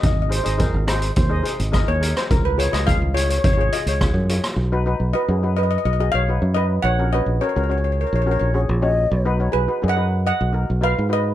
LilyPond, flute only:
\new Staff \with { instrumentName = "Flute" } { \time 4/4 \key b \lydian \tempo 4 = 106 r8 bis'8 ais'8 bis'8 bis'8. r4 r16 | r1 | r1 | r2 ais'8 ais'8 cis''8 dis''8~ |
dis''8 r2. r8 | }